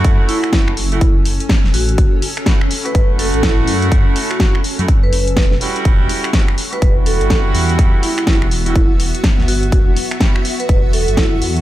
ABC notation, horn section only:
X:1
M:4/4
L:1/16
Q:"Swing 16ths" 1/4=124
K:F#phr
V:1 name="Horn section"
[A,EF]4 [A,EF]2 z [A,EF] z8 | z4 [A,EF] z2 [A,EF]8- [A,EF]- | [A,EF]4 [A,EF]2 z [A,EF] z6 [G,EF]2- | [G,EF]4 [G,EF] z2 [G,EF]8- [G,EF]- |
[G,EF]4 [G,EF]2 z [G,EF] z8 | z4 [G,EF] z8 z3 |]